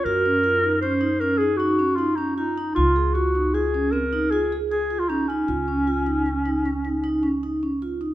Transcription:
<<
  \new Staff \with { instrumentName = "Clarinet" } { \time 7/4 \key des \major \tempo 4 = 155 bes'2 c''4 bes'8 aes'8 ges'4 f'8 ees'8 ees'4 | f'4 ges'4 aes'4 bes'4 aes'8. r16 aes'8. f'16 ees'8 des'8~ | des'1. r4 | }
  \new Staff \with { instrumentName = "Vibraphone" } { \time 7/4 \key des \major ges'8 des'8 r8 ees'8 des'8 ees'8 des'8 r8 ees'8 des'8 ees'8 des'8 f'8 ees'8 | f'8 aes'8 f'8 ees'8 f'8 des'8 c'8 ees'8 f'8 aes'8 aes'8 f'8 des'8 ees'8 | f'8 des'8 f'8 ees'8 des'8 ees'8 des'8 ees'8 ees'8 des'8 ees'8 des'8 f'8 ees'8 | }
  \new Staff \with { instrumentName = "Upright bass" } { \clef bass \time 7/4 \key des \major ges,1.~ ges,4 | des,1.~ des,4 | des,1.~ des,4 | }
>>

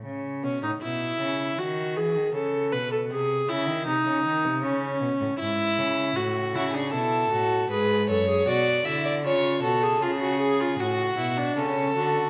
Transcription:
<<
  \new Staff \with { instrumentName = "Violin" } { \time 4/4 \key fis \minor \tempo 4 = 78 r1 | r1 | r8 fis'16 gis'16 a'4 b'8 cis''8 d''8 e''16 d''16 | cis''8 a'8 gis'4 fis'4 a'4 | }
  \new Staff \with { instrumentName = "Viola" } { \time 4/4 \key fis \minor r8 cis'16 dis'16 e'4 fis'8 gis'8 a'8 b'16 a'16 | gis'8 e'8 dis'4 cis'4 e'4 | fis'8 e'16 d'16 e'8 fis'8 gis'8 a'16 gis'16 fis'8 e'8 | eis'8 fis'16 gis'16 eis'16 fis'16 gis'16 eis'16 fis'8 e'16 d'16 cis'8 fis'8 | }
  \new Staff \with { instrumentName = "Cello" } { \clef bass \time 4/4 \key fis \minor cis8 b,16 a,16 b,8 cis8 dis8 e16 dis16 cis8 b,8 | bis,8 cis16 dis16 bis,16 cis16 dis16 bis,16 cis8 b,16 a,16 gis,8 cis8 | a,8 cis8 b,8 a,8 gis,8 fis,8 b,8 d8 | cis8 b,8 cis4 a,8 b,8 cis8 d8 | }
>>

